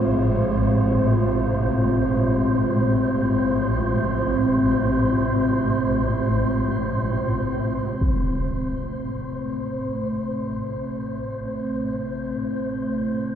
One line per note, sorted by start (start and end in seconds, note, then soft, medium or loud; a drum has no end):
0.00 8.03 A1 medium
0.00 8.02 A2 medium
0.00 8.02 G#3 medium
0.00 13.35 C4 medium
0.00 8.02 F4 medium
0.00 8.01 C5 medium
0.00 13.35 C5 medium
8.01 13.35 A1 medium
8.01 13.35 A2 medium
8.01 13.35 A3 medium
8.01 13.35 C5 medium
8.01 impact medium
11.49 13.35 E4 medium